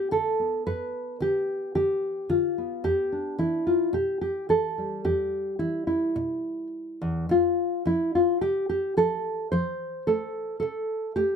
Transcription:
0.00 0.39 B3 soft
0.00 2.23 D4 soft
0.00 0.11 G4 medium
0.11 0.60 D3 medium
0.11 0.66 A4 loud
0.40 2.33 B3 soft
0.67 1.15 G2 medium
0.67 1.21 B4 loud
1.20 1.69 D3 medium
1.20 1.74 G4 loud
1.75 2.24 D3 medium
1.75 2.83 G4 medium
2.29 2.79 D3 medium
2.29 2.84 F4 medium
2.58 3.70 B3 medium
2.84 3.33 E2 medium
2.84 3.39 G4 medium
3.12 3.66 D4 soft
3.38 3.88 E3 medium
3.38 3.94 E4 medium
3.67 3.94 F4 medium
3.93 4.43 B2 medium
3.93 4.20 G4 medium
4.21 4.49 G4 medium
4.49 4.99 E3 medium
4.49 5.05 A4 medium
4.78 7.30 G3 soft
5.05 5.54 E2 medium
5.05 5.59 G4 medium
5.59 6.10 E3 medium
5.59 5.86 E4 medium
5.87 7.29 E4 medium
6.16 6.67 B2 medium
7.02 7.29 E2 medium
7.29 7.80 F2 medium
7.29 7.86 F4 medium
7.85 8.36 F3 medium
7.85 8.14 E4 medium
8.15 8.41 F4 medium
8.41 8.91 C3 medium
8.41 8.68 G4 loud
8.69 8.97 G4 medium
8.97 9.46 F3 medium
8.97 9.51 A4 loud
9.52 10.02 F3 medium
9.52 10.61 C5 loud
10.07 10.57 A3 medium
10.07 10.58 A4 loud
10.60 11.11 C3 medium
10.60 11.15 A4 loud
11.16 11.36 A3 medium
11.16 11.36 G4 loud

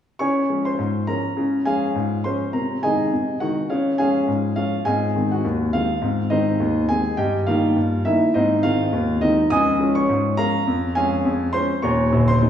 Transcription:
0.19 0.45 C#3 medium
0.19 0.37 F4 soft
0.19 0.63 C#5 medium
0.19 0.63 G#5 medium
0.19 0.65 C#6 medium
0.49 0.65 F3 soft
0.49 0.65 G#3 soft
0.49 0.66 C#4 soft
0.65 1.05 C5 medium
0.65 1.07 C6 medium
0.79 1.03 G#2 medium
1.07 1.24 F3 soft
1.07 1.24 G#3 soft
1.07 1.24 C#4 soft
1.07 1.62 A#4 medium
1.07 1.66 A#5 medium
1.37 1.61 C#3 medium
1.37 1.54 F4 soft
1.65 1.82 F3 soft
1.65 1.82 G#3 soft
1.65 1.82 C#4 soft
1.65 2.20 G#4 medium
1.65 2.20 F5 medium
1.65 2.24 G#5 medium
1.95 2.20 G#2 medium
2.24 2.40 F3 soft
2.24 2.41 G#3 soft
2.24 2.41 C#4 soft
2.24 2.52 C5 medium
2.24 2.53 C6 medium
2.53 2.78 C3 medium
2.53 2.81 A#4 soft
2.53 2.82 A#5 medium
2.83 2.99 D#3 soft
2.83 2.99 G#3 soft
2.83 3.00 D#4 soft
2.83 3.37 G#4 medium
2.83 3.37 D#5 medium
2.83 3.41 G#5 medium
3.12 3.36 C3 medium
3.40 3.57 D#3 soft
3.40 3.57 G#3 soft
3.40 3.57 D#4 medium
3.40 3.68 F#4 medium
3.40 3.69 F#5 medium
3.70 3.94 C#3 medium
3.70 3.97 F4 soft
3.70 3.97 C#5 medium
3.70 3.98 F5 medium
3.98 4.15 F3 soft
3.98 4.15 G#3 soft
3.98 4.15 C#4 soft
3.98 4.53 G#4 medium
3.98 4.53 F5 medium
3.98 4.56 G#5 medium
4.28 4.52 G#2 medium
4.56 4.73 F3 soft
4.56 4.73 G#3 soft
4.56 4.73 C#4 soft
4.56 4.84 F4 medium
4.56 4.85 F5 medium
4.85 5.10 G#2 medium
4.85 5.03 C4 soft
4.85 5.28 G#4 medium
4.85 5.28 D#5 medium
4.85 5.31 G#5 medium
5.15 5.31 D#3 soft
5.15 5.32 G#3 soft
5.15 5.32 C4 soft
5.32 5.70 F#4 medium
5.32 5.73 F#5 medium
5.44 5.69 D#2 medium
5.73 5.89 D#3 soft
5.73 5.90 G#3 soft
5.73 5.90 C4 soft
5.73 6.27 F4 medium
5.73 6.31 F5 medium
6.02 6.26 G#2 medium
6.02 6.19 C4 soft
6.30 6.47 D#3 soft
6.30 6.47 G#3 soft
6.30 6.47 C4 soft
6.30 6.85 D#4 medium
6.30 6.85 C5 medium
6.30 6.88 D#5 medium
6.60 6.84 D#2 medium
6.89 7.05 D#3 soft
6.89 7.05 G#3 soft
6.89 7.05 C4 soft
6.89 7.16 G#4 medium
6.89 7.18 G#5 medium
7.17 7.42 G2 medium
7.17 7.45 G4 medium
7.17 7.45 D#5 medium
7.17 7.46 G5 medium
7.47 7.63 D#3 soft
7.47 7.64 A#3 soft
7.47 7.64 D#4 soft
7.47 8.01 F4 medium
7.47 8.05 F5 medium
7.76 8.01 G2 medium
8.05 8.21 D#3 soft
8.05 8.22 A#3 soft
8.05 8.22 D#4 soft
8.05 8.33 E4 medium
8.05 8.34 E5 medium
8.34 8.59 G#2 medium
8.34 8.52 C4 medium
8.34 8.62 D#4 medium
8.34 8.62 C5 medium
8.34 8.63 D#5 medium
8.63 8.79 D#3 soft
8.63 8.80 G#3 soft
8.63 8.80 C4 medium
8.63 9.18 F4 medium
8.63 9.21 F5 medium
8.93 9.17 D#2 medium
9.21 9.37 D#3 medium
9.21 9.38 G#3 soft
9.21 9.38 C4 medium
9.21 9.49 D#4 medium
9.21 9.50 D#5 medium
9.50 9.75 C#2 medium
9.50 9.68 F3 medium
9.50 9.93 D#5 medium
9.50 9.93 G#5 medium
9.50 9.96 D#6 loud
9.79 9.95 F3 medium
9.79 9.96 G#3 soft
9.79 9.96 C#4 medium
9.95 10.34 C#5 medium
9.95 10.37 C#6 medium
10.09 10.33 G#2 medium
10.37 10.54 F3 medium
10.37 10.54 G#3 medium
10.37 10.54 C#4 medium
10.37 10.92 A#4 medium
10.37 10.92 F5 medium
10.37 10.95 A#5 loud
10.67 10.91 F2 medium
10.95 11.12 F3 medium
10.95 11.12 G#3 medium
10.95 11.12 C#4 medium
10.95 11.50 G#4 medium
10.95 11.50 F5 medium
10.95 11.53 G#5 medium
11.25 11.49 F2 medium
11.53 11.69 F3 soft
11.53 11.70 G#3 soft
11.53 11.70 C#4 medium
11.53 11.81 C5 medium
11.53 11.82 C6 loud
11.82 12.06 D#1 medium
11.82 12.06 D#2 medium
11.82 12.25 C#5 medium
11.82 12.26 A#5 medium
11.82 12.28 C#6 medium
12.12 12.35 A#0 medium
12.12 12.35 A#1 medium
12.28 12.50 C5 medium
12.28 12.50 C6 loud
12.41 12.50 G3 medium
12.41 12.50 A#3 medium
12.41 12.50 D#4 soft

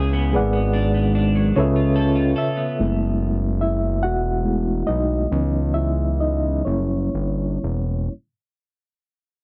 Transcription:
0.00 0.37 C#2 loud
0.00 0.27 C#3 medium
0.00 0.42 C#3 medium
0.00 0.13 B3 medium
0.00 0.28 C#4 medium
0.00 0.42 E4 medium
0.00 0.29 G#4 medium
0.00 0.42 G#4 medium
0.00 0.30 B4 medium
0.00 0.31 E5 medium
0.13 0.53 B3 medium
0.32 1.53 G#1 loud
0.32 1.64 G#2 medium
0.32 1.55 G#3 medium
0.32 1.56 G#4 medium
0.32 1.56 B4 medium
0.32 1.57 D5 medium
0.32 1.57 F#5 medium
0.53 0.94 B3 medium
0.73 1.14 D4 medium
0.94 1.79 B3 medium
1.15 1.64 D4 medium
1.35 1.64 F#3 medium
1.55 2.34 C#2 loud
1.55 2.78 C#3 medium
1.55 2.86 C#3 medium
1.55 2.34 C#4 medium
1.55 1.63 E4 soft
1.55 2.79 A4 medium
1.55 2.79 B4 medium
1.55 2.40 C#5 medium
1.60 2.82 F4 medium
1.60 2.37 E5 medium
1.76 2.14 F4 medium
1.96 2.35 A4 medium
2.15 2.85 F4 medium
2.36 3.36 A4 medium
2.36 3.60 E5 medium
2.57 3.36 B3 soft
2.79 4.05 F#1 loud
2.79 3.33 G#3 medium
2.79 3.34 A3 soft
2.79 3.34 B3 soft
2.79 3.34 E4 medium
3.61 4.00 E4 medium
3.61 4.04 E5 medium
4.03 4.83 E1 loud
4.03 4.84 F#4 medium
4.03 4.90 F#5 medium
4.44 4.83 G#3 soft
4.44 4.83 A3 soft
4.44 4.83 B3 soft
4.44 4.83 E4 soft
4.87 5.27 B1 medium
4.87 5.71 D#4 medium
4.87 5.77 D#5 medium
5.31 6.62 C#2 loud
5.31 6.62 E3 soft
5.31 6.62 F#3 soft
5.31 6.62 B3 soft
5.31 6.63 C#4 medium
5.74 6.17 E4 medium
5.74 6.21 E5 medium
6.20 6.63 D#4 soft
6.20 6.67 D#5 medium
6.65 7.09 F#1 medium
6.65 8.08 G3 soft
6.65 8.08 A#3 soft
6.65 7.71 C#4 soft
6.65 8.08 E4 medium
6.65 7.70 C#5 medium
7.15 7.58 G1 medium
7.64 8.09 E1 medium

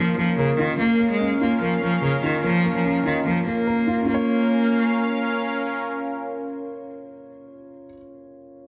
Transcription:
0.00 0.16 F3 medium
0.00 0.18 A#3 medium
0.00 0.59 C#4 medium
0.00 0.75 C#4 medium
0.00 0.59 F4 medium
0.00 0.39 A#4 medium
0.00 0.75 A#4 medium
0.00 0.75 F5 medium
0.18 0.36 F3 medium
0.18 0.78 A#3 medium
0.38 0.57 C#3 medium
0.38 0.80 A#4 medium
0.59 0.77 D#3 medium
0.59 0.79 F4 medium
0.79 0.98 A#3 medium
0.79 1.09 A#3 loud
0.79 4.05 C#4 medium
0.79 4.05 A#4 medium
0.79 4.05 F5 medium
1.00 1.60 A#3 medium
1.11 1.39 G#3 medium
1.20 2.23 C#4 medium
1.41 1.60 A#3 medium
1.41 2.22 F4 medium
1.62 1.80 F3 medium
1.62 1.81 A#3 medium
1.82 2.01 F3 medium
1.82 2.42 A#3 medium
2.03 2.21 C#3 medium
2.03 3.05 A#4 medium
2.23 2.42 D#3 medium
2.23 3.04 F4 medium
2.44 2.73 F3 loud
2.44 2.63 A#3 medium
2.64 3.25 A#3 medium
2.75 3.04 F3 medium
2.85 3.88 C#4 medium
3.05 3.24 D#3 medium
3.05 3.86 F4 medium
3.26 3.45 F3 medium
3.26 3.45 A#3 medium
3.47 4.08 A#3 medium
3.47 4.04 A#3 medium
3.67 4.08 A#4 medium
3.87 4.05 F4 medium
4.02 7.85 C#4 medium
4.06 5.27 A#3 medium
4.06 7.91 C#4 medium
4.06 7.89 F4 medium
4.06 7.91 A#4 medium
4.06 7.93 A#4 medium
4.06 7.91 F5 medium
4.14 7.97 C#5 medium

